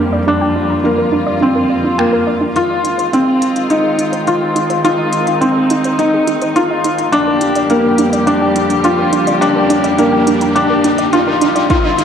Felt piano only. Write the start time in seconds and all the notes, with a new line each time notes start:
Already playing: A#3
0.28 D4
0.85 A#3
1.42 C4
1.99 A#3
2.56 F4
3.13 C4
3.70 D#4
4.27 F4
4.84 F4
5.41 C4
5.99 D#4
6.56 F4
7.12 D4
7.70 A#3
8.27 D4
8.84 F4
9.41 D4
9.98 A#3
10.55 D4
11.13 F4
11.70 F4